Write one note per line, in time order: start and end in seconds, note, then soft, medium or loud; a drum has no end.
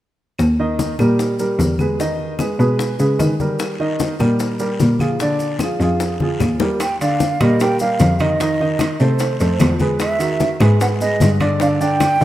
0.39 0.95 D#2 medium
0.39 high bongo medium
0.39 high conga soft
0.39 claves medium
0.39 maracas medium
0.59 0.92 D#3 medium
0.59 0.92 D#4 medium
0.59 0.93 D#5 medium
0.59 high conga soft
0.79 high bongo soft
0.79 high conga medium
0.79 maracas medium
0.99 1.55 A#2 medium
0.99 1.32 G3 medium
0.99 1.33 G4 medium
0.99 1.33 A#4 medium
0.99 high bongo soft
0.99 high conga medium
0.99 claves medium
0.99 maracas soft
1.19 high bongo medium
1.19 high conga soft
1.19 maracas medium
1.39 1.72 G3 medium
1.39 1.73 G4 medium
1.39 1.73 A#4 medium
1.39 high bongo soft
1.39 high conga soft
1.39 maracas medium
1.59 2.54 E2 medium
1.59 high bongo soft
1.59 low bongo medium
1.59 high conga medium
1.59 maracas medium
1.79 1.96 G#3 medium
1.79 1.97 G#4 medium
1.79 1.97 B4 medium
1.79 high bongo soft
1.79 high conga medium
1.79 claves medium
1.79 maracas soft
1.99 2.33 D#3 medium
1.99 2.33 D#4 medium
1.99 2.33 D#5 medium
1.99 high bongo medium
1.99 high conga soft
1.99 maracas medium
2.19 high conga soft
2.39 2.56 G#3 medium
2.39 2.56 G#4 medium
2.39 2.57 B4 medium
2.39 high bongo soft
2.39 high conga medium
2.39 claves medium
2.39 maracas medium
2.59 2.97 B2 medium
2.59 2.92 G#3 medium
2.59 2.93 G#4 medium
2.59 2.93 B4 medium
2.59 high bongo soft
2.59 high conga soft
2.59 maracas soft
2.79 high bongo medium
2.79 high conga soft
2.79 maracas medium
2.99 3.19 C#3 medium
2.99 3.32 G#3 medium
2.99 3.33 G#4 medium
2.99 3.33 B4 medium
2.99 high bongo soft
2.99 high conga soft
2.99 maracas soft
3.19 4.14 D#3 medium
3.19 high bongo soft
3.19 low bongo medium
3.19 high conga medium
3.19 claves medium
3.19 maracas medium
3.40 3.73 G3 medium
3.40 3.73 G4 medium
3.40 3.73 A#4 medium
3.40 high bongo soft
3.40 high conga medium
3.40 maracas soft
3.59 high bongo medium
3.59 high conga soft
3.59 long guiro medium
3.59 claves medium
3.59 maracas medium
3.80 4.13 D#3 medium
3.80 4.13 D#4 medium
3.80 4.13 D#5 medium
3.80 high conga soft
3.99 high bongo soft
3.99 high conga medium
3.99 short guiro medium
3.99 maracas medium
4.19 4.76 A#2 medium
4.19 4.52 G3 medium
4.19 4.53 G4 medium
4.19 4.53 A#4 medium
4.19 high bongo soft
4.19 high conga medium
4.19 short guiro medium
4.19 claves medium
4.19 maracas soft
4.40 high bongo medium
4.40 high conga soft
4.40 long guiro medium
4.40 maracas medium
4.59 4.93 G3 medium
4.59 4.93 G4 medium
4.59 4.93 A#4 medium
4.59 high bongo soft
4.59 high conga soft
4.59 maracas medium
4.80 5.74 A#2 medium
4.80 high bongo soft
4.80 low bongo medium
4.80 high conga medium
4.80 short guiro medium
4.80 maracas medium
4.99 5.17 F3 medium
4.99 5.17 F4 medium
4.99 5.17 G#4 medium
4.99 high bongo soft
4.99 high conga medium
4.99 short guiro medium
4.99 claves medium
4.99 maracas soft
5.20 5.54 D3 medium
5.20 5.54 D4 medium
5.20 5.54 D5 medium
5.20 high bongo medium
5.20 high conga soft
5.20 long guiro medium
5.20 maracas medium
5.39 high conga soft
5.39 maracas medium
5.59 5.78 F3 medium
5.59 5.78 F4 medium
5.59 5.78 G#4 medium
5.59 high bongo medium
5.59 high conga medium
5.59 short guiro medium
5.59 claves medium
5.59 maracas medium
5.80 6.36 F2 medium
5.80 6.14 F3 medium
5.80 6.14 F4 medium
5.80 6.14 G#4 medium
5.80 high bongo soft
5.80 high conga soft
5.80 short guiro medium
5.80 maracas soft
6.00 high bongo medium
6.00 high conga soft
6.00 long guiro medium
6.00 maracas medium
6.20 6.54 F3 medium
6.20 6.54 F4 medium
6.20 6.54 G#4 medium
6.20 high bongo soft
6.20 high conga medium
6.40 7.34 D#2 medium
6.40 high bongo soft
6.40 low bongo medium
6.40 low conga medium
6.40 short guiro medium
6.40 claves medium
6.40 maracas medium
6.60 6.77 G3 medium
6.60 6.77 G4 medium
6.60 6.78 A#4 medium
6.60 high bongo medium
6.60 low conga medium
6.60 short guiro medium
6.60 maracas soft
6.80 7.00 G5 medium
6.80 high bongo medium
6.80 high conga soft
6.80 high timbale medium
6.80 long guiro medium
6.80 claves medium
6.80 maracas medium
7.00 7.34 D3 medium
7.00 7.34 D4 medium
7.00 7.34 D5 medium
7.00 7.43 F5 medium
7.00 high conga soft
7.00 high timbale medium
7.00 maracas medium
7.20 high bongo medium
7.20 high conga medium
7.20 short guiro medium
7.20 maracas medium
7.40 7.96 A#2 medium
7.40 7.57 G3 medium
7.40 7.58 G4 medium
7.40 7.58 A#4 medium
7.40 7.63 D#5 medium
7.40 high bongo soft
7.40 high conga medium
7.40 high timbale medium
7.40 short guiro medium
7.40 claves medium
7.40 maracas soft
7.60 7.77 G3 medium
7.60 7.77 G4 medium
7.60 7.77 A#4 medium
7.60 7.80 G5 medium
7.60 high bongo medium
7.60 high conga soft
7.60 high timbale medium
7.60 long guiro medium
7.60 maracas medium
7.79 8.14 G3 medium
7.79 8.14 G4 medium
7.79 8.14 A#4 medium
7.79 8.22 F5 medium
7.79 high bongo soft
7.79 high conga soft
7.79 maracas medium
7.99 8.94 F2 medium
7.99 high bongo soft
7.99 low bongo medium
7.99 high conga medium
7.99 high timbale medium
7.99 short guiro medium
7.99 maracas medium
8.19 8.37 D#3 medium
8.19 8.37 D#4 medium
8.19 9.02 D#5 medium
8.19 8.37 D#5 medium
8.19 high bongo soft
8.19 high conga medium
8.19 high timbale medium
8.19 short guiro medium
8.19 claves medium
8.19 maracas soft
8.40 8.57 D#3 medium
8.40 8.57 D#4 medium
8.40 8.57 D#5 medium
8.40 high bongo medium
8.40 high conga soft
8.40 high timbale medium
8.40 long guiro medium
8.40 maracas medium
8.60 8.93 D#3 medium
8.60 8.94 D#4 medium
8.60 8.94 D#5 medium
8.60 high conga soft
8.79 high bongo medium
8.79 high conga medium
8.79 high timbale medium
8.79 short guiro medium
8.79 claves medium
8.79 maracas medium
9.00 9.38 C3 medium
9.00 9.33 A3 medium
9.00 9.33 A4 medium
9.00 9.80 C5 medium
9.00 9.34 C5 medium
9.00 high bongo soft
9.00 high conga soft
9.00 short guiro medium
9.00 maracas soft
9.19 high bongo medium
9.19 high conga soft
9.19 high timbale medium
9.19 long guiro medium
9.19 maracas medium
9.40 9.59 F2 medium
9.40 9.73 A3 medium
9.40 9.74 A4 medium
9.40 9.74 C5 medium
9.40 high bongo soft
9.40 high conga soft
9.40 high timbale medium
9.40 maracas medium
9.60 10.55 E2 medium
9.60 high bongo soft
9.60 low bongo medium
9.60 high conga medium
9.60 high timbale medium
9.60 low timbale medium
9.60 short guiro medium
9.60 claves medium
9.60 maracas medium
9.79 10.13 G#3 medium
9.79 10.14 G#4 medium
9.79 10.14 B4 medium
9.79 high bongo soft
9.79 high conga medium
9.79 short guiro medium
9.79 maracas soft
10.00 10.57 E5 medium
10.00 high bongo medium
10.00 high conga soft
10.00 high timbale medium
10.00 long guiro medium
10.00 claves medium
10.00 maracas medium
10.19 10.53 D#3 medium
10.19 10.53 F#4 medium
10.19 10.53 E5 medium
10.19 high conga soft
10.19 high timbale medium
10.19 maracas medium
10.40 high bongo medium
10.40 high conga medium
10.40 short guiro medium
10.40 maracas medium
10.60 11.17 G#2 medium
10.60 10.77 G#3 medium
10.60 10.77 G#4 medium
10.60 10.77 B4 medium
10.60 high bongo soft
10.60 high conga medium
10.60 high timbale medium
10.60 short guiro medium
10.60 claves medium
10.60 maracas soft
10.80 10.97 G#3 medium
10.80 10.97 G#4 medium
10.80 10.98 B4 medium
10.80 10.87 F#5 medium
10.80 high bongo medium
10.80 high conga soft
10.80 high timbale medium
10.80 long guiro medium
10.80 maracas medium
11.01 11.34 G#3 medium
11.01 11.34 G#4 medium
11.01 11.34 B4 medium
11.01 11.32 D#5 medium
11.01 high bongo soft
11.01 high conga soft
11.01 maracas medium
11.20 12.15 G2 medium
11.20 high bongo soft
11.20 low bongo medium
11.20 high conga medium
11.20 high timbale medium
11.20 short guiro medium
11.20 maracas medium
11.40 11.57 D3 medium
11.40 11.57 D4 medium
11.40 11.58 D5 medium
11.40 high bongo soft
11.40 high conga medium
11.40 high timbale medium
11.40 short guiro medium
11.40 claves medium
11.40 maracas soft
11.60 11.77 D3 medium
11.60 11.78 D4 medium
11.60 11.78 D5 medium
11.60 11.67 F5 medium
11.60 high bongo medium
11.60 high conga soft
11.60 high timbale medium
11.60 long guiro medium
11.60 maracas medium
11.81 12.14 D3 medium
11.81 12.14 D4 medium
11.81 12.14 D5 medium
11.81 12.24 G5 medium
11.81 high conga soft
11.81 maracas medium
12.00 high bongo medium
12.00 high conga medium
12.00 high timbale medium
12.00 short guiro medium
12.00 claves medium
12.00 maracas medium
12.20 12.24 F3 medium
12.20 12.24 F4 medium
12.20 12.24 G4 medium
12.20 high bongo soft
12.20 short guiro medium
12.20 maracas soft